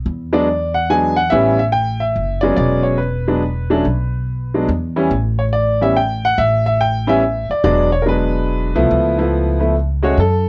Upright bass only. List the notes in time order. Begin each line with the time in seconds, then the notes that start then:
0.06 E2
1.32 A1
2.16 F#1
2.58 E1
3.85 B1
4.68 E2
5.11 A1
6.38 A1
7.50 muted upright bass stroke
7.64 E1
8.76 C2
8.91 C#2
10.17 F#2